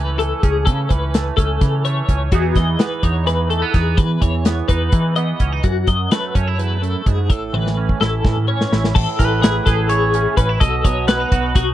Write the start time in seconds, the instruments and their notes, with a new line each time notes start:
Already playing: picked electric bass C#2, clean electric guitar E3 A3 C#4 B4
0.19 clean electric guitar A3 A4, closed hi-hat
0.42 picked electric bass C#2, clean electric guitar C#4 G#4, kick, closed hi-hat
0.66 clean electric guitar C#3 A4, picked electric bass C#3, kick, closed hi-hat
0.89 picked electric bass C#2, clean electric guitar E3 B4, kick, closed hi-hat
1.14 clean electric guitar A3, snare, closed hi-hat
1.37 picked electric bass C#2, clean electric guitar C#4 A4, kick, closed hi-hat
1.60 picked electric bass C#3, clean electric guitar E3, kick, snare, closed hi-hat
1.85 clean electric guitar A3 C#5, closed hi-hat
2.09 picked electric bass C#2, clean electric guitar C#4, kick, closed hi-hat
2.32 clean electric guitar E2 E3 B3 D#4 F#4 G#4, picked electric bass E2, kick, closed hi-hat
2.55 picked electric bass E2, clean electric guitar E3 D#5, kick, snare, closed hi-hat
2.79 clean electric guitar B3 B4, snare, closed hi-hat
3.03 picked electric bass E2, clean electric guitar D#4 C#5, kick, closed hi-hat
3.26 clean electric guitar E3 B4, snare, closed hi-hat
3.49 clean electric guitar A3 A4, closed hi-hat
3.62 clean electric guitar B3
3.74 picked electric bass E2, clean electric guitar D#4 G#4, kick, snare, closed hi-hat
3.97 clean electric guitar E2 B4, picked electric bass E3, kick, closed hi-hat
4.21 picked electric bass E2, clean electric guitar E3 C#5, kick, closed hi-hat
4.45 clean electric guitar B3, snare, closed hi-hat
4.68 picked electric bass E2, clean electric guitar D#4 B4, kick, closed hi-hat
4.92 picked electric bass E3, clean electric guitar E3, kick, closed hi-hat
5.16 clean electric guitar B3 D#5, closed hi-hat
5.40 picked electric bass C#2, clean electric guitar C#4, kick, closed hi-hat
5.52 clean electric guitar D#4
5.63 clean electric guitar F#2 F#4, picked electric bass F#2, kick, closed hi-hat
5.87 picked electric bass F#2, clean electric guitar F#3 D#5, kick, closed hi-hat
6.11 clean electric guitar A3 B4, snare, closed hi-hat
6.35 picked electric bass F#2, clean electric guitar C#4 C#5, kick, closed hi-hat
6.47 clean electric guitar E4
6.58 clean electric guitar E2 B4, closed hi-hat
6.82 clean electric guitar F#2 A4, closed hi-hat
7.06 picked electric bass F#2, clean electric guitar G#2 G#4, kick, closed hi-hat
7.29 picked electric bass A1, clean electric guitar A2 A4, kick, closed hi-hat
7.53 picked electric bass A1, clean electric guitar E3 B4, high tom
7.67 snare
7.77 clean electric guitar C#4
7.89 kick
8.01 picked electric bass A1, clean electric guitar E4 A4, snare
8.24 picked electric bass A2, clean electric guitar E3, kick, snare
8.36 mid tom
8.48 clean electric guitar C#4 C#5
8.61 snare
8.72 picked electric bass A1, clean electric guitar E4, snare
8.84 snare
8.95 picked electric bass A1, clean electric guitar A2 A4, kick, crash
9.19 picked electric bass A1, clean electric guitar E3 B4, kick, snare, closed hi-hat
9.42 clean electric guitar E4 G#4, snare, closed hi-hat
9.66 picked electric bass A1, clean electric guitar G#4 A4, kick, snare, closed hi-hat
9.89 clean electric guitar E4 G#4 C#5, closed hi-hat
10.14 clean electric guitar C#4, closed hi-hat
10.37 picked electric bass A1, clean electric guitar C#4 B4, kick, closed hi-hat
10.49 clean electric guitar E4
10.60 picked electric bass B1, clean electric guitar B2 A4 D#5, kick, closed hi-hat
10.84 picked electric bass B1, clean electric guitar F#3 C#5, kick, closed hi-hat
11.07 clean electric guitar C#4 B4 F#5, snare, closed hi-hat
11.20 clean electric guitar D#4
11.32 picked electric bass B1, clean electric guitar F#4, kick, closed hi-hat
11.55 picked electric bass B1, clean electric guitar D#4 F#4, kick, snare, closed hi-hat